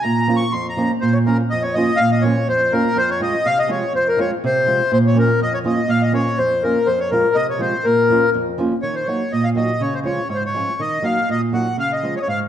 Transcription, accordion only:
0.02 0.36 A#5 loud
0.36 0.53 C#6 loud
0.52 0.67 C6 medium
0.69 0.91 A#5 medium
1.01 1.14 C5 loud
1.13 1.18 C#5 medium
1.26 1.37 A#4 medium
1.50 1.63 D#5 loud
1.63 1.75 C#5 medium
1.74 1.99 D#5 medium
1.97 2.11 F5 loud
2.11 2.23 D#5 medium
2.22 2.48 C#5 medium
2.49 2.73 C5 loud
2.73 2.97 A#4 medium
2.97 3.10 C5 loud
3.11 3.21 C#5 medium
3.23 3.47 D#5 medium
3.46 3.58 F5 loud
3.59 3.70 D#5 loud
3.71 3.93 C#5 medium
3.96 4.08 C5 loud
4.08 4.19 A#4 medium
4.20 4.31 C#5 medium
4.46 4.92 C5 medium
4.93 4.98 C5 loud
5.07 5.17 C#5 medium
5.19 5.40 A#4 medium
5.43 5.53 D#5 loud
5.54 5.59 C#5 medium
5.66 5.90 D#5 medium
5.89 6.02 F5 loud
6.02 6.13 D#5 medium
6.14 6.39 C#5 medium
6.38 6.63 C5 medium
6.63 6.88 A#4 medium
6.87 6.99 C5 loud
7.00 7.10 C#5 medium
7.11 7.36 A#4 medium
7.35 7.47 D#5 loud
7.50 7.61 C#5 medium
7.61 7.86 C5 medium
7.84 8.30 A#4 medium
8.82 8.95 C#5 loud
8.95 9.07 C5 medium
9.07 9.32 C#5 medium
9.32 9.45 D#5 medium
9.44 9.50 F5 medium
9.57 9.82 D#5 medium
9.81 9.94 C#5 loud
9.94 9.99 C5 medium
10.05 10.28 C#5 medium
10.30 10.37 C#5 medium
10.35 10.43 C5 medium
10.46 10.81 C#5 loud
10.81 11.06 D#5 loud
11.04 11.29 F5 medium
11.31 11.41 D#5 loud
11.54 11.76 F#5 medium
11.80 11.92 F5 loud
11.93 12.15 D#5 medium
12.17 12.19 C#5 medium
12.17 12.21 D#5 medium
12.22 12.28 C#5 medium
12.29 12.40 F5 medium

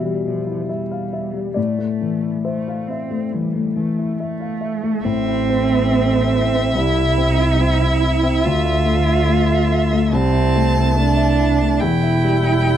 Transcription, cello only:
0.00 0.26 E3 soft
0.26 0.72 F3 soft
0.71 1.57 G3 soft
1.56 2.35 A3 soft
2.44 2.89 A3 soft
2.87 3.34 C4 soft
3.32 3.77 G3 soft
3.75 4.18 A3 soft
4.19 5.06 A3 medium
5.05 6.74 C4 medium
6.75 8.45 E4 medium
8.44 10.14 F4 medium
10.13 10.97 C4 medium
10.98 11.82 D4 medium
11.80 12.77 E4 medium

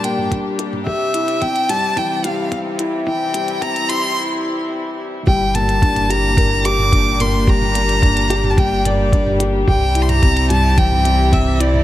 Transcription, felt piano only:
0.00 0.88 G3 loud
0.00 0.04 A#3 medium
0.00 0.20 A#3 medium
0.00 0.32 D4 medium
0.00 0.59 G4 medium
0.32 0.58 D4 medium
0.59 0.75 G4 medium
0.87 1.13 G4 medium
1.14 1.40 E4 medium
1.42 1.57 C4 medium
1.69 1.85 G3 medium
1.97 2.12 E3 medium
2.24 2.51 G3 medium
2.52 2.78 C4 medium
2.79 3.06 E4 loud
3.07 3.22 E3 loud
3.34 3.50 G3 medium
3.62 3.88 C4 medium
3.89 4.05 E4 medium
5.27 5.43 G3 loud
5.55 5.70 A#3 medium
5.82 6.08 D4 medium
6.10 6.25 G4 medium
6.37 6.63 A#4 medium
6.65 6.91 G4 medium
6.92 7.08 D4 medium
7.20 7.35 A#3 medium
7.48 7.63 G3 medium
7.75 8.01 A#3 medium
8.02 8.29 D4 medium
8.30 8.56 G4 loud
8.57 8.73 G3 loud
8.85 9.01 A#3 medium
9.12 9.38 D4 medium
9.40 9.56 G4 medium
9.68 9.94 G4 medium
9.95 10.21 E4 medium
10.22 10.38 C4 medium
10.50 10.66 G3 medium
10.77 10.93 E3 medium
11.05 11.31 G3 medium
11.32 11.58 C4 medium
11.59 11.84 E4 loud

